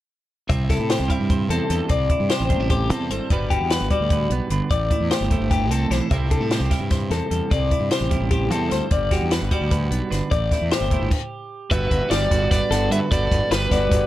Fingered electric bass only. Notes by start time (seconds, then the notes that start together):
0.50 C2
0.79 A2
0.99 C2
1.20 G2
1.49 E2
1.70 E2
1.90 C2
2.20 G2
2.40 A1
2.59 A1
2.90 E2
3.10 G#1
3.31 G1
3.60 E2
3.81 G1
4.00 D2
4.30 B1
4.50 G1
4.71 A1
5.00 E2
5.21 G1
5.40 G1
5.70 C2
5.90 B1
6.11 C2
6.40 A2
6.60 C2
6.80 G2
7.10 E2
7.31 E2
7.51 C2
7.80 G2
8.01 A1
8.20 A1
8.51 E2
8.71 D2
8.91 G1
9.21 E2
9.41 G1
9.61 D2
9.91 B1
10.11 G1
10.31 A1
10.61 E2
10.80 G1
11.01 G1
11.71 G1
11.91 G1
12.11 G1
12.31 G1
12.51 G1
12.70 G1
12.90 G2
13.11 G1
13.31 G1
13.50 G1
13.71 G1
13.91 G1